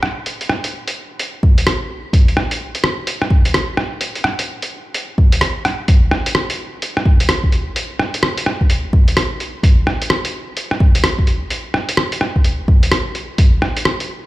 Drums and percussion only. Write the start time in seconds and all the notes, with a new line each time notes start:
0.03 cross-stick
0.26 closed hi-hat
0.41 closed hi-hat
0.49 cross-stick
0.64 closed hi-hat
0.88 closed hi-hat
1.20 closed hi-hat
1.43 kick
1.58 closed hi-hat
1.67 cross-stick, closed hi-hat
2.13 kick, closed hi-hat
2.28 closed hi-hat
2.37 cross-stick
2.51 closed hi-hat
2.75 closed hi-hat
2.84 cross-stick
3.07 closed hi-hat
3.22 cross-stick
3.30 kick
3.45 closed hi-hat
3.54 cross-stick, closed hi-hat
3.77 cross-stick
4.01 closed hi-hat
4.15 closed hi-hat
4.24 cross-stick
4.39 closed hi-hat
4.62 closed hi-hat
4.94 closed hi-hat
5.18 kick
5.32 closed hi-hat
5.41 cross-stick, closed hi-hat
5.65 cross-stick, closed hi-hat
5.88 kick, closed hi-hat
6.11 cross-stick
6.26 closed hi-hat
6.35 cross-stick
6.50 closed hi-hat
6.82 closed hi-hat
6.97 cross-stick
7.05 kick
7.20 closed hi-hat
7.29 cross-stick, closed hi-hat
7.44 kick
7.52 closed hi-hat
7.76 closed hi-hat
7.99 cross-stick
8.14 closed hi-hat
8.23 cross-stick
8.38 closed hi-hat
8.46 cross-stick
8.61 kick
8.70 closed hi-hat
8.93 kick
9.08 closed hi-hat
9.17 cross-stick, closed hi-hat
9.40 closed hi-hat
9.63 kick, closed hi-hat
9.87 cross-stick
10.02 closed hi-hat
10.10 cross-stick
10.25 closed hi-hat
10.57 closed hi-hat
10.71 cross-stick
10.80 kick
10.95 closed hi-hat
11.04 cross-stick, closed hi-hat
11.19 kick
11.27 closed hi-hat
11.50 closed hi-hat
11.74 cross-stick
11.89 closed hi-hat
11.97 cross-stick
12.12 closed hi-hat
12.21 cross-stick
12.36 kick
12.44 closed hi-hat
12.68 kick
12.83 closed hi-hat
12.92 cross-stick, closed hi-hat
13.15 closed hi-hat
13.38 kick, closed hi-hat
13.62 cross-stick
13.77 closed hi-hat
13.85 cross-stick
14.00 closed hi-hat